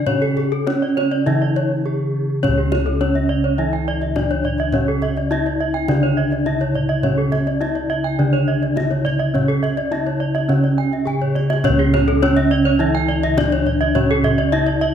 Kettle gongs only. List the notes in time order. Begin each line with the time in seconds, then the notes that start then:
Already playing: C#3
0.07 C#4
0.67 D4
1.26 C#3
1.85 D4
2.43 C#4
2.48 C#2
3.01 D4
4.16 D4
4.73 C#4
5.31 D4
5.89 C#3
6.46 D4
7.04 C#4
7.61 D4
8.19 C#3
8.76 D4
9.34 C#4
9.91 D4
10.49 C#3
11.07 D4
11.64 C#4
11.69 C#2
12.22 D4
13.38 D4
13.95 C#4
14.53 D4